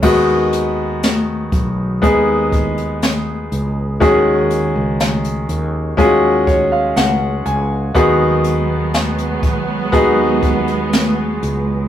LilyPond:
<<
  \new Staff \with { instrumentName = "Grand piano" } { \time 4/4 \key aes \dorian \tempo 4 = 60 << { ees4. r2 r8 | ees4. r4 des''16 f''16 ges''8 aes''8 | ees4. r2 r8 | } \\ { <aes ces' ees' ges'>2 <aes ces' ees' aes'>2 | <aes des' ges' aes'>2 <aes des' f' ges' aes'>2 | <ces' ees' ges' aes'>2 <ces' ees' ges' aes'>2 | } >> }
  \new Staff \with { instrumentName = "String section" } { \clef bass \time 4/4 \key aes \dorian r1 | r1 | <ges aes ces'>1 | }
  \new Staff \with { instrumentName = "Fretless electric bass" } { \clef bass \time 4/4 \key aes \dorian ees,4. ces,8 ees,4. des,8 | ees,8. des,8. ees,8 ees,4 des,8 des,8 | ees,4. ces,8 ees,4. des,8 | }
  \new DrumStaff \with { instrumentName = "Drums" } \drummode { \time 4/4 <cymc bd>8 hh8 <hh sn>8 <hh bd>8 <hh bd>8 <hh bd>16 hh16 <hh sn>8 hh8 | <hh bd>8 hh8 <hh sn>16 hh16 hh8 <hh bd>8 <hh bd>8 <hh sn>8 hh8 | <hh bd>8 hh8 <hh sn>16 hh16 <hh bd>8 <hh bd>8 <hh bd>16 hh16 <hh sn>8 hh8 | }
>>